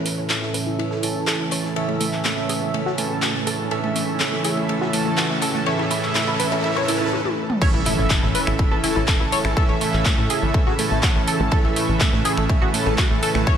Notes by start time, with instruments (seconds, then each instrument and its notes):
Already playing: supersaw synth A2 E3 C#4 A4 E5, analog synth pad C#3 E3 A3 E4 A4, riser
0.05 synth arpeggio sound E4, open hi-hat, ride
0.30 synth arpeggio sound E4, snare, clap, ride
0.42 synth arpeggio sound E4, snare
0.54 synth arpeggio sound B4, open hi-hat
0.67 synth arpeggio sound E4
0.79 synth arpeggio sound E4, ride
0.91 synth arpeggio sound A4, snare
1.03 supersaw synth A2 E3 C#4 A4 A5, synth arpeggio sound E4, open hi-hat, ride
1.15 synth arpeggio sound E4
1.27 synth arpeggio sound A4, snare, clap, ride
1.40 synth arpeggio sound E4
1.51 synth arpeggio sound C#5, open hi-hat, ride
1.64 synth arpeggio sound E4, snare
1.76 supersaw synth A2 E3 C#4 A4 E5, synth arpeggio sound A4, ride
1.88 synth arpeggio sound A3, ride
2.00 synth arpeggio sound A3, open hi-hat, ride
2.13 clap
2.25 synth arpeggio sound A3, snare, clap, ride
2.37 synth arpeggio sound A3, ride
2.49 synth arpeggio sound G#4, open hi-hat, ride
2.62 synth arpeggio sound A3
2.74 synth arpeggio sound A3, ride
2.86 synth arpeggio sound F#4, snare
2.98 supersaw synth A2 E3 C#4 A4 A5, synth arpeggio sound A3, open hi-hat, ride
3.11 synth arpeggio sound A3
3.22 synth arpeggio sound F#4, snare, clap, ride
3.35 synth arpeggio sound A3
3.47 synth arpeggio sound A4, open hi-hat, ride
3.59 synth arpeggio sound A3
3.71 supersaw synth A2 E3 C#4 A4 E5, synth arpeggio sound A4, ride
3.84 synth arpeggio sound A3, ride
3.96 synth arpeggio sound A3, open hi-hat, ride
4.20 synth arpeggio sound A3, snare, clap, ride
4.33 synth arpeggio sound A3, snare
4.44 synth arpeggio sound G#4, open hi-hat, ride
4.57 synth arpeggio sound A3, ride
4.69 synth arpeggio sound A3, ride
4.81 synth arpeggio sound F#4, snare
4.93 supersaw synth A2 E3 C#4 A4 A5, synth arpeggio sound A3, open hi-hat, ride
5.06 synth arpeggio sound A3
5.17 synth arpeggio sound F#4, snare, clap, ride
5.30 synth arpeggio sound A3
5.41 synth arpeggio sound A4, open hi-hat, ride
5.54 synth arpeggio sound A3, snare
5.66 supersaw synth A2 E3 C#4 A4 E5, synth arpeggio sound C#5, ride
5.79 synth arpeggio sound E4, ride
5.90 synth arpeggio sound E4, open hi-hat, ride
6.03 clap
6.15 synth arpeggio sound E4, snare, clap, ride
6.27 synth arpeggio sound E4, ride
6.39 synth arpeggio sound B4, snare, open hi-hat, ride
6.51 synth arpeggio sound E4, snare, ride
6.64 synth arpeggio sound E4, snare, ride
6.76 synth arpeggio sound C#5, snare, ride
6.88 supersaw synth A2 E3 C#4 A4 A5, synth arpeggio sound E4, snare, open hi-hat, ride
7.00 synth arpeggio sound E4, snare
7.13 high tom
7.25 high tom
7.50 mid tom
7.61 supersaw synth A2 E3 C#4 A4 E5, analog synth pad C#3 E3 A3 E4 A4, synth arpeggio sound C#5, kick, ride, crash, impact
7.74 analog synth bass A1, synth arpeggio sound E4, ride
7.85 synth arpeggio sound E4, open hi-hat, ride
7.98 analog synth bass A1
8.10 synth arpeggio sound E4, kick, snare, clap, ride
8.23 analog synth bass A2, synth arpeggio sound E4, snare
8.35 synth arpeggio sound B4, open hi-hat
8.47 analog synth bass A1, synth arpeggio sound E4, finger snap
8.59 synth arpeggio sound E4, kick, ride
8.71 analog synth bass A1, synth arpeggio sound A4
8.83 supersaw synth A2 E3 C#4 A4 A5, synth arpeggio sound E4, open hi-hat, ride
8.96 analog synth bass A1, synth arpeggio sound E4
9.07 synth arpeggio sound A4, kick, snare, clap, ride
9.20 analog synth bass A1, synth arpeggio sound E4
9.32 synth arpeggio sound C#5, open hi-hat, ride
9.45 analog synth bass A1, synth arpeggio sound E4, finger snap, snare
9.57 supersaw synth A2 E3 C#4 A4 E5, synth arpeggio sound A4, kick, ride
9.69 analog synth bass A1, synth arpeggio sound A3, ride
9.81 synth arpeggio sound A3, open hi-hat, ride
9.93 analog synth bass A1, clap
10.05 synth arpeggio sound A3, kick, snare, clap, ride
10.18 analog synth bass A2, synth arpeggio sound A3, ride
10.30 synth arpeggio sound G#4, open hi-hat, ride
10.42 analog synth bass A1, synth arpeggio sound A3
10.54 synth arpeggio sound A3, kick, ride
10.67 analog synth bass A1, synth arpeggio sound F#4, snare
10.79 supersaw synth A2 E3 C#4 A4 A5, synth arpeggio sound A3, open hi-hat, ride
10.91 analog synth bass A1, synth arpeggio sound A3
11.03 synth arpeggio sound F#4, kick, snare, clap, ride
11.15 analog synth bass A1, synth arpeggio sound A3
11.28 synth arpeggio sound A4, open hi-hat, ride
11.40 analog synth bass A1, synth arpeggio sound A3
11.51 supersaw synth A2 E3 C#4 A4 E5, synth arpeggio sound A4, analog synth pad B4, kick, ride
11.64 analog synth bass A1, synth arpeggio sound A3, ride
11.76 synth arpeggio sound A3, open hi-hat, ride
11.89 analog synth bass A1
12.00 synth arpeggio sound A3, kick, snare, clap, ride
12.13 analog synth bass A2, synth arpeggio sound A3, snare
12.25 synth arpeggio sound G#4, open hi-hat, ride
12.37 analog synth bass A1, synth arpeggio sound A3, finger snap, ride
12.49 synth arpeggio sound A3, kick, ride
12.62 analog synth bass A1, synth arpeggio sound F#4
12.74 supersaw synth A2 E3 C#4 A4 A5, synth arpeggio sound A3, open hi-hat, ride
12.86 analog synth bass A1, synth arpeggio sound A3
12.98 synth arpeggio sound F#4, kick, snare, clap, ride
13.10 analog synth bass A1, synth arpeggio sound A3
13.23 synth arpeggio sound A4, open hi-hat, ride
13.35 analog synth bass A1, synth arpeggio sound A3, finger snap, snare
13.47 supersaw synth A2 E3 C#4 A4 E5, synth arpeggio sound C#5, kick, ride